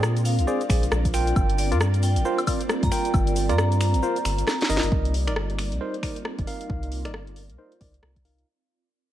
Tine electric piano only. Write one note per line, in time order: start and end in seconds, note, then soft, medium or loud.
0.47 0.61 G#4 medium
0.47 0.61 C5 medium
0.47 0.61 D5 loud
0.69 0.83 G#4 medium
0.69 0.83 C5 medium
0.69 0.83 D5 medium
1.14 1.69 F4 medium
1.14 1.69 A#4 medium
1.14 1.69 G5 medium
1.72 1.78 F4 medium
1.72 1.78 A#4 medium
1.72 1.78 D5 loud
2.25 2.39 F4 medium
2.25 2.39 A#4 medium
2.25 2.39 C5 loud
2.47 2.61 F4 medium
2.47 2.61 A#4 medium
2.47 2.61 D5 medium
2.92 3.46 F4 medium
2.92 3.46 A#4 medium
2.92 3.46 G5 medium
3.49 3.55 F4 medium
3.49 3.55 A#4 medium
3.49 3.55 D5 loud
4.03 4.17 F4 medium
4.03 4.17 A#4 medium
4.03 4.17 C5 loud
4.70 5.14 D#4 medium
4.70 5.14 A#4 medium
4.70 5.14 D#5 loud
5.27 5.33 D#4 medium
5.27 5.33 A#4 medium
5.27 5.33 D5 loud
5.81 5.95 D#4 medium
5.81 5.95 A#4 medium
5.81 5.95 C5 loud
6.03 6.17 D#4 medium
6.03 6.17 A#4 medium
6.03 6.17 D5 medium
6.47 7.02 D#4 medium
6.47 7.02 A#4 medium
6.47 7.02 F5 medium
7.05 7.11 D#4 medium
7.05 7.11 A#4 medium
7.05 7.11 D5 medium
7.58 7.72 D#4 medium
7.58 7.72 A#4 medium
7.58 7.72 C5 medium
7.81 7.94 D#4 medium
7.81 7.94 A#4 medium
7.81 7.94 D5 medium
8.25 8.46 D#4 medium
8.25 8.46 A#4 medium
8.25 8.46 F5 medium